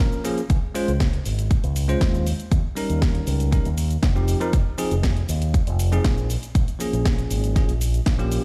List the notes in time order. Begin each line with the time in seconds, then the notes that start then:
Already playing: F3 A#3 C#4 A#4
0.12 shaker
0.24 F3 A#3 C#4 G#4, open hi-hat, shaker
0.38 closed hi-hat, shaker
0.50 C#2, kick, closed hi-hat, shaker
0.75 G#3 C#4 F4 C5, open hi-hat, shaker
0.88 C#2, closed hi-hat, shaker
1.00 kick, snare, closed hi-hat, shaker
1.13 closed hi-hat
1.26 G#1, open hi-hat, shaker
1.39 closed hi-hat, shaker
1.51 kick, closed hi-hat, shaker
1.64 C#2, closed hi-hat, shaker
1.76 open hi-hat, shaker
1.88 G#3 C#4 F4 C5, closed hi-hat, shaker
2.01 D#2, kick, snare, closed hi-hat, shaker
2.15 shaker
2.27 open hi-hat, shaker
2.40 closed hi-hat, shaker
2.52 D#2, kick, closed hi-hat, shaker
2.75 G3 C#4 D#4 A#4, open hi-hat, shaker
2.90 D#2, closed hi-hat, shaker
3.02 kick, snare, closed hi-hat, shaker
3.15 closed hi-hat
3.27 C#2, open hi-hat, shaker
3.40 closed hi-hat, shaker
3.52 G3 C#4 D#4 A#4, kick, closed hi-hat, shaker
3.65 D#2, closed hi-hat, shaker
3.78 open hi-hat, shaker
3.91 closed hi-hat, shaker
4.03 F1, kick, snare, closed hi-hat, shaker
4.15 F3 C4 D#4 G4, shaker
4.28 open hi-hat, shaker
4.41 F3 C4 D#4 A#4, closed hi-hat, shaker
4.53 F1, kick, closed hi-hat, shaker
4.78 F3 C4 D#4 G#4, open hi-hat, shaker
4.91 F1, closed hi-hat, shaker
5.03 kick, snare, closed hi-hat, shaker
5.17 closed hi-hat
5.29 D#2, open hi-hat, shaker
5.42 closed hi-hat, shaker
5.54 kick, closed hi-hat, shaker
5.67 F1, closed hi-hat, shaker
5.79 open hi-hat, shaker
5.92 F3 C4 D#4 G#4, closed hi-hat, shaker
6.04 A#1, kick, snare, closed hi-hat, shaker
6.18 shaker
6.30 open hi-hat, shaker
6.43 closed hi-hat, shaker
6.55 A#1, kick, closed hi-hat, shaker
6.68 closed hi-hat, shaker
6.79 F3 A#3 C#4 G#4, open hi-hat, shaker
6.93 A#1, closed hi-hat, shaker
7.05 kick, snare, closed hi-hat, shaker
7.18 closed hi-hat, shaker
7.31 G#1, open hi-hat, shaker
7.44 closed hi-hat, shaker
7.56 F3 A#3 C#4 G#4, kick, snare, closed hi-hat, shaker
7.69 A#1, closed hi-hat, shaker
7.81 open hi-hat, shaker
7.94 closed hi-hat, shaker
8.06 A#1, kick, snare, closed hi-hat, shaker
8.19 F3 A#3 C#4 G4, closed hi-hat, shaker
8.32 open hi-hat, shaker